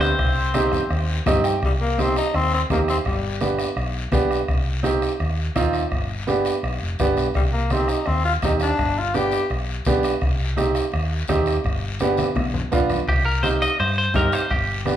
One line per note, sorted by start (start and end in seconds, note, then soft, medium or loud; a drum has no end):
0.00 0.12 D2 medium
0.00 1.23 C4 medium
0.00 1.22 C5 medium
0.00 bombo rim medium
0.00 short guiro medium
0.19 0.76 C2 medium
0.19 bombo low medium
0.19 bombo rim medium
0.19 high conga soft
0.19 long guiro medium
0.54 0.80 C4 medium
0.54 0.80 D#4 medium
0.54 0.80 G4 medium
0.54 bombo rim medium
0.54 high conga medium
0.54 short guiro medium
0.72 bombo rim medium
0.72 low conga medium
0.72 short guiro medium
0.91 1.19 D#2 medium
0.91 bombo rim medium
0.91 high conga soft
0.91 long guiro medium
1.26 1.55 G2 medium
1.26 1.52 C4 medium
1.26 1.52 D#4 medium
1.26 1.52 G4 medium
1.26 1.44 D#5 medium
1.26 bombo low medium
1.26 bombo rim medium
1.26 high conga medium
1.26 low conga medium
1.26 short guiro medium
1.44 1.61 G5 medium
1.44 bombo rim medium
1.44 short guiro medium
1.63 2.20 C2 medium
1.63 1.72 G3 medium
1.63 bombo low medium
1.63 bombo rim medium
1.63 high conga soft
1.63 long guiro medium
1.81 2.02 A#3 medium
1.98 2.23 C4 medium
1.98 2.17 C4 medium
1.98 2.24 D#4 medium
1.98 2.24 G4 medium
1.98 bombo rim medium
1.98 high conga medium
1.98 short guiro medium
2.16 2.36 D#4 medium
2.16 bombo rim medium
2.16 short guiro medium
2.34 2.63 D#2 loud
2.34 2.52 C4 medium
2.34 bombo rim medium
2.34 high conga soft
2.34 long guiro medium
2.54 2.62 C4 medium
2.70 2.99 D#2 medium
2.70 2.79 A#3 medium
2.70 2.95 C4 medium
2.70 2.96 D#4 medium
2.70 2.96 G4 medium
2.70 bombo low medium
2.70 bombo rim medium
2.70 high conga medium
2.70 short guiro medium
2.88 2.97 C4 medium
2.88 bombo rim medium
2.88 short guiro medium
3.05 3.63 G1 medium
3.05 3.40 G3 medium
3.05 bombo low medium
3.05 bombo rim medium
3.05 high conga soft
3.05 long guiro medium
3.41 3.66 B3 medium
3.41 3.67 D4 medium
3.41 3.66 G4 medium
3.41 bombo rim medium
3.41 high conga medium
3.41 short guiro medium
3.59 bombo rim medium
3.59 short guiro medium
3.76 4.05 B1 loud
3.76 bombo rim medium
3.76 high conga soft
3.76 long guiro medium
4.12 4.42 B1 medium
4.12 4.38 B3 medium
4.12 4.38 D4 medium
4.12 4.38 G4 medium
4.12 bombo low medium
4.12 bombo rim medium
4.12 high conga medium
4.12 short guiro medium
4.31 bombo rim medium
4.31 short guiro medium
4.48 5.06 C2 medium
4.48 bombo low medium
4.48 bombo rim medium
4.48 high conga soft
4.48 long guiro medium
4.83 5.09 C4 medium
4.83 5.09 D#4 medium
4.83 5.10 G4 medium
4.83 bombo rim medium
4.83 high conga medium
4.83 short guiro medium
5.02 bombo rim medium
5.02 short guiro medium
5.20 5.49 D#2 medium
5.20 bombo rim medium
5.20 high conga soft
5.20 long guiro medium
5.56 5.85 D#2 medium
5.56 5.81 C4 medium
5.56 5.81 D#4 medium
5.56 5.82 F4 medium
5.56 bombo low medium
5.56 bombo rim medium
5.56 high conga medium
5.56 short guiro medium
5.73 bombo rim medium
5.73 short guiro medium
5.91 6.50 G1 medium
5.91 bombo low medium
5.91 bombo rim medium
5.91 high conga soft
5.91 long guiro medium
6.27 6.53 B3 medium
6.27 6.53 D4 medium
6.27 6.53 G4 medium
6.27 bombo rim medium
6.27 high conga medium
6.27 short guiro medium
6.45 bombo rim medium
6.45 short guiro medium
6.63 6.78 B1 medium
6.63 bombo rim medium
6.63 high conga soft
6.63 long guiro medium
6.81 6.98 F1 medium
6.99 7.16 G1 medium
6.99 7.25 B3 medium
6.99 7.25 D4 medium
6.99 7.25 G4 medium
6.99 bombo low medium
6.99 bombo rim medium
6.99 high conga medium
6.99 short guiro medium
7.17 7.34 B1 medium
7.17 bombo rim medium
7.17 short guiro medium
7.34 7.93 C2 medium
7.34 7.43 G3 medium
7.34 bombo low medium
7.34 bombo rim medium
7.34 high conga soft
7.34 long guiro medium
7.53 7.73 A#3 medium
7.70 7.91 C4 medium
7.70 7.97 C4 medium
7.70 7.97 D#4 medium
7.70 7.97 G4 medium
7.70 bombo rim medium
7.70 high conga medium
7.70 short guiro medium
7.88 8.08 D#4 medium
7.88 bombo rim medium
7.88 short guiro medium
8.06 8.36 D#2 medium
8.06 8.24 C4 medium
8.06 bombo rim medium
8.06 high conga soft
8.06 long guiro medium
8.25 8.33 F4 medium
8.42 8.71 D#2 medium
8.42 8.68 C4 medium
8.42 8.52 D#4 medium
8.42 8.68 D#4 medium
8.42 8.69 G4 medium
8.42 bombo low medium
8.42 bombo rim medium
8.42 high conga medium
8.42 short guiro medium
8.60 9.00 D4 medium
8.60 bombo rim medium
8.60 short guiro medium
8.77 9.36 G1 loud
8.77 bombo low medium
8.77 bombo rim medium
8.77 high conga soft
8.77 long guiro medium
8.99 9.16 F4 medium
9.14 9.39 B3 medium
9.14 9.40 D4 medium
9.14 9.50 G4 medium
9.14 9.40 G4 medium
9.14 bombo rim medium
9.14 high conga medium
9.14 short guiro medium
9.32 bombo rim medium
9.32 short guiro medium
9.50 9.79 B1 medium
9.50 bombo rim medium
9.50 high conga soft
9.50 long guiro medium
9.85 10.15 B1 medium
9.85 10.11 B3 medium
9.85 10.11 D4 medium
9.85 10.12 G4 medium
9.85 bombo low medium
9.85 bombo rim medium
9.85 high conga medium
9.85 short guiro medium
10.03 bombo rim medium
10.03 short guiro medium
10.21 10.79 C2 medium
10.21 bombo low medium
10.21 bombo rim medium
10.21 high conga soft
10.21 long guiro medium
10.57 10.82 C4 medium
10.57 10.82 D#4 medium
10.57 10.82 G4 medium
10.57 bombo rim medium
10.57 high conga medium
10.57 short guiro medium
10.75 bombo rim medium
10.75 short guiro medium
10.92 11.22 D#2 medium
10.92 bombo rim medium
10.92 high conga soft
10.92 long guiro medium
11.28 11.58 D#2 medium
11.28 11.54 C4 medium
11.28 11.54 D#4 medium
11.28 11.54 G4 medium
11.28 bombo low medium
11.28 bombo rim medium
11.28 high conga medium
11.28 short guiro medium
11.46 bombo rim medium
11.46 short guiro medium
11.64 12.22 G1 medium
11.64 bombo low medium
11.64 bombo rim medium
11.64 high conga soft
11.64 long guiro medium
11.99 12.26 B3 medium
11.99 12.26 D4 medium
11.99 12.26 G4 medium
11.99 bombo rim medium
11.99 high conga medium
11.99 short guiro medium
12.17 bombo rim medium
12.17 high conga medium
12.17 short guiro medium
12.35 12.64 B1 loud
12.35 bombo rim medium
12.35 high conga medium
12.35 long guiro medium
12.54 low conga medium
12.72 13.01 B1 medium
12.72 12.97 B3 medium
12.72 12.97 D4 medium
12.72 12.97 F4 medium
12.72 bombo low medium
12.72 bombo rim medium
12.72 low conga medium
12.72 short guiro medium
12.90 bombo rim medium
12.90 low conga medium
12.90 short guiro medium
13.08 13.65 C2 medium
13.08 13.25 G4 medium
13.08 bombo low medium
13.08 bombo rim medium
13.08 high conga soft
13.08 long guiro medium
13.25 13.42 A#4 medium
13.43 13.68 C4 medium
13.43 13.68 D#4 medium
13.43 13.68 G4 medium
13.43 13.48 C5 medium
13.43 bombo rim medium
13.43 high conga medium
13.43 short guiro medium
13.62 13.79 D#5 medium
13.62 bombo rim medium
13.62 short guiro medium
13.79 14.08 G2 medium
13.79 13.97 C5 medium
13.79 bombo rim medium
13.79 high conga soft
13.79 long guiro medium
13.98 14.14 C5 medium
14.14 14.29 G2 medium
14.14 14.39 C4 medium
14.14 14.40 D#4 medium
14.14 14.40 G4 medium
14.14 14.33 A#4 medium
14.14 bombo low medium
14.14 bombo rim medium
14.14 high conga medium
14.14 short guiro medium
14.32 14.51 C5 medium
14.32 bombo rim medium
14.32 short guiro medium
14.50 14.96 G1 medium
14.50 14.84 G4 medium
14.50 bombo low medium
14.50 bombo rim medium
14.50 high conga soft
14.50 long guiro medium
14.85 14.96 B3 medium
14.85 14.96 D4 medium
14.85 14.96 G4 medium
14.85 bombo rim medium
14.85 high conga medium
14.85 short guiro medium